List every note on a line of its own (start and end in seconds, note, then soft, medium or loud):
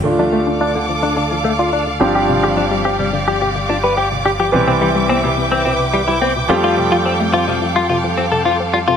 0.04 1.98 D2 medium
0.04 0.12 D3 medium
0.04 1.97 A3 medium
0.04 1.98 D4 medium
0.04 1.98 F4 medium
0.04 1.99 A4 medium
0.04 4.49 D5 medium
0.04 4.49 F5 medium
0.04 1.99 D6 medium
0.19 0.26 F3 medium
0.19 0.23 D4 medium
0.33 0.40 A3 medium
0.33 0.37 A3 medium
0.47 0.54 D4 medium
0.61 0.72 D4 medium
0.61 0.65 F4 medium
0.75 0.85 D3 medium
0.75 0.79 D3 medium
0.89 1.00 F3 medium
1.03 1.10 A3 medium
1.03 1.13 D4 medium
1.17 1.24 D3 medium
1.17 1.24 D4 medium
1.31 1.38 F3 medium
1.44 1.52 A3 medium
1.44 1.49 A3 medium
1.59 1.66 D4 medium
1.59 1.69 F4 medium
1.73 1.84 D4 medium
1.73 1.77 F4 medium
1.87 1.92 D3 medium
2.00 4.50 G1 medium
2.00 2.12 D3 medium
2.00 4.49 F3 medium
2.00 4.50 G3 medium
2.00 4.50 C4 medium
2.00 4.50 D4 medium
2.00 4.51 G4 medium
2.00 2.05 G4 medium
2.00 4.50 G4 medium
2.00 8.97 D6 medium
2.15 2.22 F3 medium
2.15 2.26 G4 medium
2.29 2.36 C3 medium
2.43 2.50 D3 medium
2.43 2.48 G4 medium
2.57 2.61 F3 medium
2.57 2.64 D4 medium
2.71 2.78 G3 medium
2.85 2.89 C4 medium
2.85 2.96 G4 medium
2.99 3.04 C3 medium
2.99 3.10 G3 medium
3.13 3.24 D3 medium
3.27 3.35 F3 medium
3.27 3.38 G4 medium
3.41 3.49 C3 medium
3.41 3.48 G4 medium
3.55 3.63 D3 medium
3.69 3.74 F3 medium
3.69 3.77 D4 medium
3.84 3.91 G3 medium
3.84 3.94 B4 medium
3.97 4.02 C4 medium
3.97 4.08 G4 medium
4.12 4.16 C3 medium
4.25 4.36 D3 medium
4.25 4.30 G4 medium
4.39 4.47 F3 medium
4.39 4.50 G4 medium
4.52 6.47 C2 medium
4.52 4.61 B2 medium
4.52 6.46 E3 medium
4.52 6.46 G3 medium
4.52 6.46 C4 medium
4.52 6.47 G4 medium
4.52 6.47 B4 medium
4.52 6.46 B4 medium
4.52 6.47 E5 medium
4.52 8.97 G5 medium
4.68 4.75 C3 medium
4.68 4.72 C4 medium
4.81 4.86 E3 medium
4.81 4.89 G3 medium
4.96 5.03 G3 loud
5.09 5.14 B3 medium
5.09 5.20 C4 medium
5.24 5.28 B2 medium
5.24 5.34 C3 medium
5.38 5.49 C3 medium
5.52 5.59 E3 medium
5.52 5.62 C4 medium
5.65 5.73 B2 medium
5.65 5.72 C4 medium
5.80 5.87 C3 medium
5.93 5.98 E3 medium
5.93 6.01 G3 medium
6.08 6.15 G3 medium
6.08 6.18 E4 medium
6.22 6.26 B3 medium
6.22 6.32 C4 medium
6.36 6.40 B2 medium
6.48 8.97 F2 medium
6.48 8.97 F3 medium
6.48 6.61 F3 medium
6.48 8.97 G3 medium
6.48 8.97 A3 medium
6.48 8.97 C4 medium
6.48 6.54 F4 medium
6.48 8.97 G4 medium
6.48 8.97 A4 medium
6.48 8.97 F5 medium
6.64 6.71 G3 medium
6.64 6.74 F4 medium
6.78 6.85 C3 medium
6.92 6.99 F3 medium
6.92 6.96 F4 medium
7.06 7.10 G3 medium
7.06 7.13 C4 medium
7.20 7.27 A3 medium
7.33 7.38 C4 medium
7.33 7.44 F4 medium
7.48 7.52 C3 medium
7.48 7.58 F3 medium
7.62 7.73 F3 medium
7.76 7.83 G3 medium
7.76 7.86 F4 medium
7.90 7.97 C3 medium
7.90 7.97 F4 medium
8.04 8.11 F3 medium
8.18 8.25 F3 medium
8.18 8.25 C4 medium
8.32 8.43 C3 medium
8.32 8.42 A4 medium
8.45 8.53 F3 medium
8.45 8.56 F4 medium
8.60 8.71 C4 medium
8.73 8.85 G3 medium
8.73 8.78 F4 medium
8.88 8.97 C3 medium
8.88 8.97 F4 medium